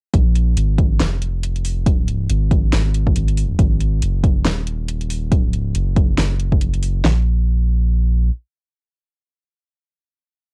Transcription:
0.14 sub bass A#1, kick, closed hi-hat
0.35 closed hi-hat
0.57 sub bass G#1, closed hi-hat
0.78 kick, closed hi-hat
1.00 sub bass F1, snare, closed hi-hat
1.22 closed hi-hat
1.43 closed hi-hat
1.56 closed hi-hat
1.65 open hi-hat
1.86 kick, closed hi-hat
2.08 closed hi-hat
2.30 sub bass G#1, closed hi-hat
2.51 kick, closed hi-hat
2.73 sub bass G#1, snare, closed hi-hat
2.94 closed hi-hat
3.07 kick
3.16 sub bass G#1, closed hi-hat
3.28 closed hi-hat
3.37 open hi-hat
3.59 sub bass G#1, kick, closed hi-hat
3.81 closed hi-hat
4.02 sub bass F#1, closed hi-hat
4.24 kick, closed hi-hat
4.45 sub bass D#1, snare, closed hi-hat
4.67 closed hi-hat
4.88 closed hi-hat
5.01 closed hi-hat
5.10 open hi-hat
5.32 sub bass D1, kick, closed hi-hat
5.53 closed hi-hat
5.62 sub bass C#1
5.75 sub bass F#1, closed hi-hat
5.96 kick, closed hi-hat
6.18 sub bass F#1, snare, closed hi-hat
6.40 closed hi-hat
6.52 kick
6.61 closed hi-hat
6.74 closed hi-hat
6.83 open hi-hat
7.04 sub bass A#1, snare

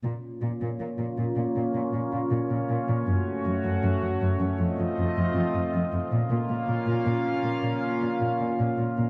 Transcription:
0.04 cello section A#2, analog synth pad A#3 C#4 F4 C#5
0.42 cello section A#2
0.61 cello section A#2
0.80 cello section A#2
0.99 cello section A#2
1.18 cello section A#2
1.37 cello section A#2
1.56 cello section A#2
1.75 cello section A#2
1.93 cello section A#2
2.12 cello section A#2
2.31 cello section A#2
2.51 cello section A#2
2.69 cello section A#2
2.89 cello section A#2
3.07 cello section F#2, analog synth pad A3 F#4
3.45 cello section F#2
3.64 cello section F#2
3.84 cello section F#2
4.02 cello section F#2
4.21 cello section F#2
4.40 cello section F#2
4.59 cello section F2, analog synth pad C4 F4 D#5
4.78 cello section F2
4.97 cello section F2
5.17 cello section F2
5.35 cello section F2
5.55 cello section F2
5.74 cello section F2
5.93 cello section F2
6.12 cello section A#2, analog synth pad A#3 C#4 F4 F5
6.30 cello section A#2
6.49 cello section A#2
6.68 cello section A#2
6.86 cello section A#2
7.06 cello section A#2
7.44 cello section A#2
7.63 cello section A#2
8.02 cello section A#2
8.21 cello section A#2
8.40 cello section A#2
8.60 cello section A#2
8.78 cello section A#2
8.98 cello section A#2

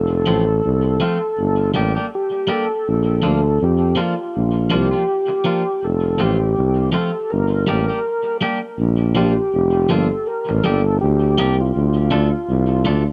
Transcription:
Already playing: tuba F1, tonewheel organ A4
0.26 tuba A1, clean electric guitar F3 A3 C4 F4
0.65 tuba C2
1.00 clean electric guitar F3 A3 C4 F4
1.39 tuba G1
1.74 tuba A1, clean electric guitar G3 A#3 D4 G4
1.95 clean electric guitar G3 A#3 D4 G4
2.15 tonewheel organ G4
2.47 clean electric guitar G3 A#3 D4 G4
2.52 tonewheel organ A4
2.88 tuba A#1
3.22 tuba D2, clean electric guitar F3 A#3 D4 F4
3.61 tuba F2, tonewheel organ G4
3.96 clean electric guitar F3 A#3 D4 F4
4.00 tonewheel organ F4
4.36 tuba A#1
4.70 tuba C2, clean electric guitar F3 A#3 D4 F4, tonewheel organ G4
4.91 clean electric guitar F3 A#3 D4 F4
5.28 muted clean electric guitar stroke
5.44 clean electric guitar F3 A#3 D4 F4
5.84 tuba F1, tonewheel organ A4
6.18 tuba A1, clean electric guitar F3 A3 C4 F4, tonewheel organ G4
6.58 tuba C2
6.92 clean electric guitar F3 A3 C4 F4, tonewheel organ A4
7.30 tuba G1, tonewheel organ A#4
7.67 tuba A1, clean electric guitar G3 A#3 D4 G4
7.88 clean electric guitar G3 A#3 D4 G4
8.41 clean electric guitar G3 A#3 D4 G4
8.79 tuba A#1
9.15 tuba A#1, clean electric guitar F3 A#3 D4 F4, tonewheel organ G4
9.54 tuba F1
9.89 tuba G1, clean electric guitar F3 A#3 D4 F4, tonewheel organ A4
10.27 tonewheel organ A#4
10.49 tuba A1, muted clean electric guitar stroke
10.63 tuba G1, clean electric guitar G3 A#3 D4 G4, tonewheel organ A4
11.01 tuba D2, tonewheel organ G4
11.38 tuba C2, clean electric guitar G3 A#3 D4 G4
11.61 tonewheel organ F4
11.76 tuba D2
12.11 tuba D2, clean electric guitar A3 D4 F4 A4
12.50 tuba C2
12.85 tuba D2, clean electric guitar A3 D4 F4 A4

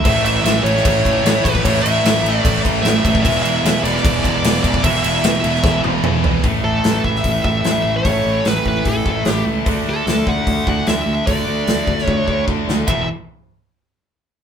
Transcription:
0.03 picked electric bass A1, distorted electric guitar A2 E3 A3, lead electric guitar E5, kick, crash
0.24 picked electric bass A1, distorted electric guitar A2 E3 A3, lead electric guitar E5, crash
0.43 picked electric bass A1, distorted electric guitar A2 E3 A3, lead electric guitar E5, snare, crash
0.64 picked electric bass A1, distorted electric guitar A2 E3 A3, lead electric guitar C#5, crash
0.77 snare
0.85 picked electric bass A1, distorted electric guitar A2 E3 A3, kick, crash
1.05 picked electric bass A1, distorted electric guitar A2 E3 A3, kick, crash
1.24 picked electric bass A1, distorted electric guitar A2 E3 A3, snare, crash
1.44 picked electric bass A1, distorted electric guitar A2 E3 A3, lead electric guitar B4, kick, crash
1.55 kick
1.64 picked electric bass A1, distorted electric guitar A2 E3 A3, lead electric guitar C#5, kick, crash
1.82 picked electric bass A1, distorted electric guitar A2 E3 A3, lead electric guitar E5, crash
2.03 picked electric bass A1, distorted electric guitar A2 E3 A3, snare, crash
2.23 picked electric bass A1, distorted electric guitar A2 E3 A3, crash
2.27 snare
2.38 lead electric guitar D5
2.43 picked electric bass A1, distorted electric guitar A2 E3 A3, kick, crash
2.63 picked electric bass A1, distorted electric guitar A2 E3 A3, kick, crash
2.82 picked electric bass A1, distorted electric guitar A2 E3 A3, lead electric guitar E5, snare, crash
3.03 picked electric bass A1, distorted electric guitar A2 E3 A3, kick, crash
3.15 kick
3.23 picked electric bass E1, distorted electric guitar E2 B2 E3, lead electric guitar E5, kick, crash
3.42 picked electric bass E1, distorted electric guitar B2 E3, lead electric guitar E5, crash
3.63 picked electric bass E1, distorted electric guitar E2 B2 E3, snare, crash
3.84 picked electric bass E1, distorted electric guitar E2 B2 E3, lead electric guitar D5, snare, crash
3.96 snare
4.03 picked electric bass E1, distorted electric guitar E2 B2 E3, kick, crash
4.24 picked electric bass E1, distorted electric guitar E2 B2 E3, lead electric guitar D5, kick, crash
4.43 picked electric bass E1, distorted electric guitar E2 B2 E3, snare, crash
4.63 picked electric bass E1, distorted electric guitar E2 B2 E3, lead electric guitar D5, kick, crash
4.74 kick
4.83 picked electric bass E1, distorted electric guitar E2 B2 E3, lead electric guitar E5, kick, crash
5.03 picked electric bass E1, distorted electric guitar E2 B2 E3, lead electric guitar E5, crash
5.22 picked electric bass E1, distorted electric guitar E2 B2 E3, snare, crash
5.42 picked electric bass E1, distorted electric guitar E2 B2 E3, crash
5.55 snare
5.63 picked electric bass E1, distorted electric guitar E2 B2 E3, kick, snare
5.83 picked electric bass E1, distorted electric guitar E2 B2 E3, high tom
6.03 picked electric bass E1, distorted electric guitar E2 B2 E3, mid tom
6.23 picked electric bass E1, distorted electric guitar E2 B2 E3, floor tom
6.43 picked electric bass A1, distorted electric guitar A2 E3 A3, kick, open hi-hat
6.64 picked electric bass A1, lead electric guitar A4
6.84 picked electric bass A1, snare, open hi-hat
7.04 picked electric bass A1, lead electric guitar E5, kick
7.16 snare
7.24 picked electric bass A1, kick, open hi-hat
7.43 picked electric bass A1, distorted electric guitar A2 E3 A3, lead electric guitar E5, kick
7.63 picked electric bass A1, distorted electric guitar A2 E3 A3, snare, open hi-hat
7.84 picked electric bass A1
7.97 lead electric guitar C#5
8.04 picked electric bass A1, distorted electric guitar A2 E3 A3, kick, open hi-hat
8.25 picked electric bass A1
8.44 picked electric bass A1, lead electric guitar B4, snare, open hi-hat
8.65 picked electric bass A1, lead electric guitar B4, kick
8.85 picked electric bass A1, lead electric guitar A4, kick, open hi-hat
9.05 picked electric bass A1, distorted electric guitar A2 E3 A3, kick
9.25 picked electric bass A1, distorted electric guitar A2 E3 A3, snare, open hi-hat
9.30 lead electric guitar G4
9.45 picked electric bass C#2
9.65 picked electric bass D2, distorted electric guitar D3 A3 D4, kick, open hi-hat
9.86 picked electric bass D2, lead electric guitar A4
10.07 picked electric bass D2, snare, open hi-hat
10.27 picked electric bass D2, lead electric guitar F#5, kick
10.47 picked electric bass D2, kick, open hi-hat
10.66 picked electric bass D2, distorted electric guitar D3 A3 D4, lead electric guitar F#5, kick
10.86 picked electric bass D2, distorted electric guitar D3 A3 D4, lead electric guitar E5, snare, open hi-hat
11.06 picked electric bass D2
11.26 picked electric bass D2, distorted electric guitar D3 A3 D4, lead electric guitar D5, kick, open hi-hat
11.47 picked electric bass D2
11.67 picked electric bass D2, snare, open hi-hat
11.87 picked electric bass D2, kick
11.98 snare
12.04 picked electric bass D2, lead electric guitar C#5, kick
12.27 picked electric bass D2, distorted electric guitar D3 A3 D4, kick
12.46 picked electric bass D2, distorted electric guitar D3 A3 D4, kick
12.68 picked electric bass D2, snare
12.87 picked electric bass E1, distorted electric guitar E2 B2 E3, lead electric guitar E5, kick, ride bell

